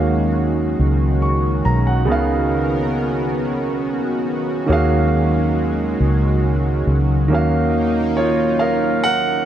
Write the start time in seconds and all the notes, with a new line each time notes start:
Already playing: D#2 D#3 F#3 G#3 A#3 C#4 F#4 G#4 C#5 F5
0.79 C#2
1.22 C#6
1.65 B1 A#5
1.87 F#5
2.05 C#3 B3 D#4 A#4
2.09 C#2 A#4 F5
4.66 D#2 D#3 F#3 G#3 A#3 C#4 F#4
4.72 G#4 F5
6.00 C#2
6.87 C#2
7.28 D#2 D#3 A#3 C#4 D#4
7.33 F#4 F5
8.17 F4 C#5
8.59 A#4 F5
9.04 A#4 F#5